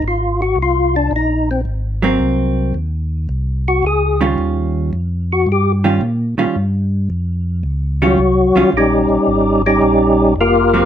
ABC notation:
X:1
M:4/4
L:1/8
Q:"Swing" 1/4=110
K:Ebdor
V:1 name="Tonewheel organ"
F G F =D E C z2 | z4 z G A z | z3 G =G z3 | z4 z [G,G]3 |
[=G,DE=G]3 [G,DEG]3 [B,FGB]2 |]
V:2 name="Hollow-body jazz guitar"
z6 z [G,B,C]- | [G,B,C]2 z4 z [E,=G,DF]- | [E,=G,DF]2 z3 [E,G,DF] z [E,G,DF] | z4 z [E,=G,DF] z [E,G,DF] |
z6 z [G,B,C] |]
V:3 name="Tonewheel organ" clef=bass
A,,,2 C,,2 B,,,2 A,,,2 | C,,2 E,,2 C,,2 D,,2 | E,,2 F,,2 =G,,2 B,, B,, | =G,,2 F,,2 D,,2 C,, C,, |
B,,, B,,, A,,,2 B,,,2 F,,,2 |]